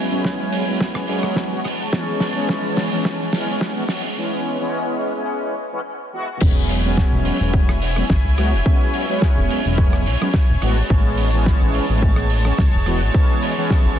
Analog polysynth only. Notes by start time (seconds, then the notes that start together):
0.11 F#3 G#3 B3 C#4
0.67 F#3 G#3 B3 C#4
1.08 F#3 G#3 B3 C#4
1.51 F#3 G#3 B3 F#4
1.92 E3 G#3 B3 C#4
2.35 E3 G#3 B3 C#4
2.91 E3 G#3 B3 C#4
3.33 E3 G#3 B3 C#4
3.75 E3 G#3 B3 F#4
4.17 E3 G#3 B3 C#4
4.60 E3 G#3 B3 C#4
5.16 E3 G#3 B3 C#4
5.72 E3 G#3 B3 C#4
6.13 E3 G#3 B3 F#4
6.41 F#3 G#3 B3 C#4
6.84 F#3 G#3 B3 C#4
7.40 F#3 G#3 B3 C#4
7.96 F#3 G#3 B3 C#4
8.37 F#3 G#3 B3 F#4
8.66 F#3 G#3 B3 C#4
9.09 F#3 G#3 B3 C#4
9.65 F#3 G#3 B3 C#4
10.21 F#3 G#3 B3 C#4
10.62 E3 G#3 B3 F#4
10.90 E3 G#3 B3 C#4
11.33 E3 G#3 B3 C#4
11.89 E3 G#3 B3 C#4
12.45 E3 G#3 B3 C#4
12.86 E3 G#3 B3 F#4
13.14 E3 G#3 B3 C#4
13.57 E3 G#3 B3 C#4